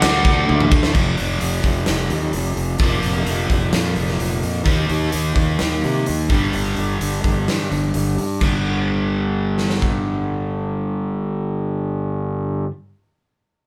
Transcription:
0.00 0.43 D2 loud
0.00 0.69 D3 medium
0.00 0.69 A3 loud
0.00 0.69 D4 loud
0.00 0.67 D5 medium
0.00 0.66 F#5 loud
0.00 snare loud
0.00 crash medium
0.25 kick medium
0.49 0.69 D2 loud
0.49 high tom medium
0.60 mid tom medium
0.70 0.92 D2 medium
0.70 0.94 D3 medium
0.70 0.93 A3 medium
0.70 0.92 D4 medium
0.70 kick loud
0.83 snare loud
0.93 1.15 F1 medium
0.93 2.78 F2 medium
0.93 2.79 C3 medium
0.93 2.80 F3 medium
0.93 kick medium
0.93 crash medium
1.17 1.40 F1 medium
1.17 open hi-hat soft
1.41 1.62 F1 medium
1.41 open hi-hat medium
1.63 1.84 F1 medium
1.63 kick medium
1.63 open hi-hat soft
1.86 2.08 F1 medium
1.86 snare medium
1.86 open hi-hat medium
2.10 2.31 D#2 medium
2.10 open hi-hat medium
2.33 2.54 F1 medium
2.33 open hi-hat medium
2.57 2.77 F1 medium
2.57 open hi-hat soft
2.78 3.00 F1 medium
2.78 4.64 A#2 medium
2.78 4.66 F3 medium
2.78 kick medium
2.78 open hi-hat medium
2.83 4.66 A#3 medium
3.03 3.24 F1 medium
3.03 open hi-hat soft
3.26 3.47 F1 medium
3.26 open hi-hat medium
3.50 3.71 F1 medium
3.50 kick medium
3.50 open hi-hat soft
3.73 3.94 F2 medium
3.73 snare loud
3.73 open hi-hat medium
3.96 4.17 F1 medium
3.96 open hi-hat soft
4.08 snare soft
4.20 4.41 F1 medium
4.20 open hi-hat medium
4.43 4.64 F2 medium
4.43 open hi-hat soft
4.64 4.87 D#2 medium
4.64 6.27 D#3 medium
4.64 6.34 A#3 medium
4.64 6.29 D#4 loud
4.64 kick medium
4.64 open hi-hat medium
4.89 5.10 D#2 medium
4.89 open hi-hat soft
5.12 5.34 D#2 medium
5.12 open hi-hat medium
5.36 5.57 D#2 medium
5.36 kick medium
5.36 open hi-hat soft
5.59 5.81 D#2 medium
5.59 snare medium
5.59 open hi-hat medium
5.84 6.05 C3 medium
5.84 open hi-hat soft
6.06 6.29 D#2 medium
6.06 open hi-hat medium
6.30 6.51 G1 medium
6.30 8.16 G2 medium
6.30 8.17 D3 medium
6.30 kick medium
6.30 open hi-hat soft
6.34 8.18 G3 medium
6.53 6.75 G1 medium
6.53 open hi-hat medium
6.76 6.98 G1 medium
6.76 open hi-hat soft
7.01 7.22 G1 medium
7.01 open hi-hat medium
7.24 7.45 G1 medium
7.24 kick medium
7.24 open hi-hat soft
7.48 7.68 G2 medium
7.48 snare medium
7.48 open hi-hat medium
7.71 7.92 G1 medium
7.71 open hi-hat soft
7.94 8.15 G1 medium
7.94 open hi-hat medium
8.18 8.39 G2 medium
8.18 open hi-hat soft
8.41 12.64 G1 medium
8.41 12.67 G2 medium
8.41 12.70 D3 medium
8.41 12.71 G3 medium
8.41 kick medium
8.41 crash medium
9.58 snare soft
9.70 snare medium
9.82 kick medium

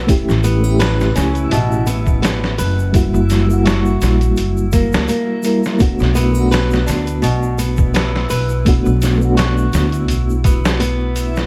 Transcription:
0.00 11.46 E4 medium
0.07 0.58 A3 medium
0.07 0.59 C#4 medium
0.07 0.59 E4 medium
0.07 0.60 G4 medium
0.07 kick loud
0.07 open hi-hat medium
0.07 shaker soft
0.28 1.13 A1 medium
0.28 snare soft
0.28 shaker soft
0.44 0.77 B3 loud
0.44 open hi-hat medium
0.44 shaker medium
0.60 2.89 A3 medium
0.60 2.90 C#4 medium
0.60 triangle medium
0.60 shaker soft
0.65 2.91 E4 medium
0.65 2.92 G4 medium
0.79 1.14 B4 medium
0.79 snare loud
0.79 open hi-hat medium
0.79 shaker soft
1.00 snare soft
1.00 shaker soft
1.15 1.48 C#2 medium
1.15 1.48 C#4 medium
1.15 snare soft
1.15 open hi-hat medium
1.15 shaker medium
1.35 closed hi-hat soft
1.35 shaker soft
1.51 2.56 A1 medium
1.51 1.86 B2 medium
1.51 open hi-hat medium
1.51 shaker soft
1.72 shaker soft
1.86 2.19 B3 medium
1.86 open hi-hat medium
1.86 shaker medium
2.07 kick medium
2.07 shaker soft
2.22 2.55 B3 medium
2.22 snare loud
2.22 open hi-hat medium
2.22 shaker medium
2.44 snare soft
2.58 3.10 F#1 medium
2.58 2.93 B4 medium
2.58 open hi-hat medium
2.58 shaker medium
2.79 shaker soft
2.92 3.44 G3 medium
2.92 3.45 A#3 medium
2.92 3.45 E4 medium
2.92 3.46 F#4 medium
2.92 kick loud
2.92 open hi-hat medium
2.92 shaker soft
3.14 3.98 F#1 medium
3.14 shaker soft
3.30 snare soft
3.30 open hi-hat medium
3.30 shaker medium
3.46 5.39 G3 medium
3.46 5.41 A#3 medium
3.50 5.42 E4 medium
3.50 5.43 F#4 medium
3.50 shaker soft
3.65 4.69 F#4 medium
3.65 snare loud
3.65 open hi-hat medium
3.65 shaker soft
3.85 shaker soft
4.02 4.38 A#1 loud
4.02 snare soft
4.02 open hi-hat medium
4.02 shaker medium
4.21 closed hi-hat soft
4.21 shaker soft
4.37 4.89 F#1 loud
4.37 open hi-hat medium
4.37 shaker soft
4.57 shaker soft
4.72 5.05 A#3 medium
4.72 kick medium
4.72 open hi-hat medium
4.72 shaker medium
4.92 5.07 C#2 medium
4.92 snare loud
4.92 shaker soft
5.08 5.80 A#3 medium
5.08 open hi-hat medium
5.08 shaker soft
5.43 5.57 G3 medium
5.43 5.58 A#3 medium
5.43 5.59 E4 medium
5.43 5.59 A#4 medium
5.43 open hi-hat medium
5.43 shaker medium
5.63 snare soft
5.63 shaker soft
5.78 6.30 A3 medium
5.78 6.30 B3 medium
5.78 6.31 D4 medium
5.78 6.32 F#4 medium
5.78 kick loud
5.78 open hi-hat medium
5.78 shaker soft
5.99 6.84 B1 loud
5.99 snare soft
5.99 shaker soft
6.15 6.48 B3 loud
6.15 open hi-hat medium
6.15 shaker medium
6.32 8.60 A3 medium
6.32 8.62 B3 medium
6.32 triangle medium
6.32 shaker soft
6.37 8.63 D4 medium
6.37 8.64 F#4 medium
6.51 6.85 B4 medium
6.51 snare loud
6.51 open hi-hat medium
6.51 shaker soft
6.70 snare soft
6.70 shaker soft
6.86 7.19 D2 medium
6.86 7.19 D4 medium
6.86 snare soft
6.86 open hi-hat medium
6.86 shaker medium
7.07 closed hi-hat soft
7.07 shaker soft
7.22 8.27 B1 medium
7.22 7.57 B2 medium
7.22 open hi-hat medium
7.22 shaker medium
7.43 shaker soft
7.58 7.91 B3 medium
7.58 open hi-hat medium
7.58 shaker medium
7.77 kick loud
7.77 shaker soft
7.94 8.27 B3 medium
7.94 snare loud
7.94 open hi-hat medium
7.94 shaker soft
8.16 snare soft
8.30 8.82 B1 medium
8.30 8.64 B4 medium
8.30 open hi-hat medium
8.30 shaker medium
8.49 shaker soft
8.65 9.16 A3 medium
8.65 9.17 B3 medium
8.65 9.17 D4 medium
8.65 9.18 F#4 medium
8.65 kick loud
8.65 open hi-hat medium
8.65 shaker medium
8.86 9.70 B1 loud
8.86 shaker soft
9.02 snare soft
9.02 open hi-hat medium
9.02 shaker medium
9.18 11.46 A3 medium
9.18 11.46 B3 medium
9.18 shaker soft
9.23 11.46 D4 medium
9.23 11.46 F#4 medium
9.37 10.41 F#4 medium
9.37 snare loud
9.37 open hi-hat medium
9.37 shaker soft
9.57 shaker soft
9.73 10.09 D2 loud
9.73 snare soft
9.73 open hi-hat medium
9.73 shaker medium
9.92 closed hi-hat soft
9.92 shaker soft
10.08 11.46 B1 medium
10.08 open hi-hat medium
10.08 shaker medium
10.30 shaker soft
10.44 10.77 B3 medium
10.44 kick medium
10.44 open hi-hat medium
10.44 shaker medium
10.65 snare loud
10.65 shaker soft
10.80 11.46 B3 loud
10.80 open hi-hat medium
10.80 shaker soft
11.16 open hi-hat medium
11.16 shaker medium
11.36 snare soft
11.36 shaker soft

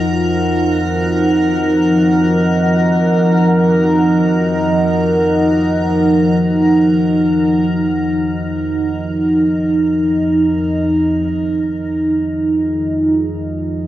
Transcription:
0.00 11.29 F2 medium
0.00 11.28 F3 medium
0.00 11.31 F3 medium
0.00 13.87 D#4 medium
0.00 11.32 A#4 medium
0.00 12.48 A#4 medium
0.00 11.31 F#5 medium
11.30 13.87 F2 medium
11.30 13.87 F3 medium
12.03 13.87 G#4 medium
12.22 13.87 F4 medium

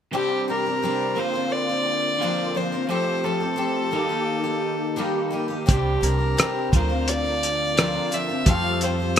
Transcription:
0.13 0.48 C3 medium
0.13 0.47 G3 medium
0.13 0.47 C4 medium
0.13 0.48 D4 medium
0.13 0.46 G4 medium
0.13 0.49 G4 medium
0.48 0.65 G3 soft
0.48 0.65 C4 soft
0.48 0.66 D4 medium
0.48 0.65 G4 soft
0.48 1.21 A#4 medium
0.66 0.82 C4 soft
0.66 0.84 D4 soft
0.66 0.83 G4 soft
0.82 1.17 C3 medium
0.82 1.15 G3 medium
0.82 1.15 C4 medium
0.82 1.15 D4 medium
0.82 1.18 G4 medium
1.15 2.17 D3 medium
1.15 1.34 F3 soft
1.15 2.19 A#3 medium
1.15 1.34 C4 soft
1.15 1.34 D4 medium
1.15 2.20 F4 medium
1.15 1.32 A#4 medium
1.19 1.53 C5 medium
1.33 1.70 C4 soft
1.33 1.69 D4 soft
1.33 1.68 A#4 soft
1.51 2.57 D5 medium
1.69 2.21 C4 soft
1.69 2.22 D4 soft
1.69 2.21 A#4 soft
2.20 2.56 D3 medium
2.20 2.53 F3 medium
2.20 2.88 A#3 medium
2.20 2.55 C4 medium
2.20 2.56 D4 medium
2.20 2.88 F4 medium
2.20 2.56 A#4 medium
2.55 2.73 F3 soft
2.55 2.73 C4 medium
2.55 2.73 D4 medium
2.55 2.71 A#4 medium
2.55 2.88 C5 medium
2.72 2.89 C4 soft
2.72 2.90 D4 soft
2.72 2.90 A#4 soft
2.89 3.23 F3 medium
2.89 3.92 A3 medium
2.89 3.24 C4 medium
2.89 3.25 G4 medium
2.89 3.25 A4 medium
2.89 3.26 C5 medium
3.24 3.42 F3 medium
3.24 3.42 C4 medium
3.24 3.40 G4 soft
3.24 5.33 A4 medium
3.24 3.39 A4 medium
3.40 3.56 C4 soft
3.40 3.57 G4 soft
3.40 3.57 A4 soft
3.56 3.91 F3 medium
3.56 3.92 C4 medium
3.56 3.92 G4 medium
3.56 3.93 A4 medium
3.91 4.96 D#3 medium
3.91 4.10 G3 medium
3.91 4.11 A#3 medium
3.91 4.09 D#4 medium
3.91 4.08 G4 medium
4.09 4.45 A#3 soft
4.09 4.44 D#4 soft
4.09 4.42 G4 soft
4.44 4.96 A#3 soft
4.44 4.97 D#4 soft
4.44 4.97 G4 medium
4.96 5.32 D#3 medium
4.96 5.29 G3 medium
4.96 5.31 A#3 medium
4.96 5.32 D#4 medium
4.96 5.32 G4 medium
5.30 5.49 G3 medium
5.30 5.50 A#3 medium
5.30 5.49 D#4 medium
5.30 5.47 G4 medium
5.48 5.67 A#3 soft
5.48 5.66 D#4 soft
5.48 5.66 G4 medium
5.66 5.99 C2 medium
5.66 6.02 C3 medium
5.66 5.99 G3 medium
5.66 6.01 C4 medium
5.66 6.02 D4 medium
5.66 6.03 G4 medium
5.66 6.04 G4 medium
5.66 kick loud
5.66 closed hi-hat medium
6.01 6.33 C2 medium
6.01 6.19 G3 soft
6.01 6.20 C4 medium
6.01 6.19 D4 medium
6.01 6.17 G4 medium
6.01 6.72 A#4 medium
6.01 closed hi-hat medium
6.19 6.37 C4 soft
6.19 6.37 D4 soft
6.19 6.37 G4 soft
6.37 6.72 C3 medium
6.37 6.72 G3 medium
6.37 6.72 C4 medium
6.37 6.73 D4 medium
6.37 6.73 G4 medium
6.37 cross-stick medium
6.37 closed hi-hat medium
6.72 7.96 D2 medium
6.72 7.75 D3 medium
6.72 6.90 F3 medium
6.72 6.90 C4 medium
6.72 6.89 D4 medium
6.72 7.76 F4 medium
6.72 6.88 A#4 medium
6.72 7.09 C5 medium
6.72 kick medium
6.72 closed hi-hat soft
6.89 7.25 C4 soft
6.89 7.24 D4 soft
6.89 7.23 A#4 soft
7.08 8.16 D5 medium
7.08 closed hi-hat medium
7.25 7.78 C4 soft
7.25 7.77 D4 soft
7.25 7.76 A#4 soft
7.43 closed hi-hat medium
7.77 8.12 D3 medium
7.77 8.10 F3 medium
7.77 8.11 C4 medium
7.77 8.12 D4 medium
7.77 8.44 F4 medium
7.77 8.13 A#4 medium
7.77 cross-stick medium
7.77 closed hi-hat medium
8.11 8.28 F3 medium
8.11 8.29 C4 medium
8.11 8.28 D4 medium
8.11 8.27 A#4 medium
8.11 8.51 E5 medium
8.11 closed hi-hat medium
8.28 8.47 C4 soft
8.28 8.46 D4 soft
8.28 8.46 A#4 soft
8.45 9.19 F2 medium
8.45 8.81 F3 medium
8.45 9.19 G3 medium
8.45 8.81 A3 medium
8.45 8.81 C4 medium
8.45 8.82 F4 medium
8.45 8.82 G4 medium
8.45 9.19 A4 medium
8.45 8.82 F5 medium
8.45 kick medium
8.45 closed hi-hat medium
8.81 8.98 A3 soft
8.81 8.99 C4 medium
8.81 8.99 F4 medium
8.81 8.99 G4 medium
8.81 9.19 C5 medium
8.81 closed hi-hat soft
9.00 9.16 C4 soft
9.00 9.17 F4 soft
9.00 9.16 G4 soft
9.16 closed hi-hat medium

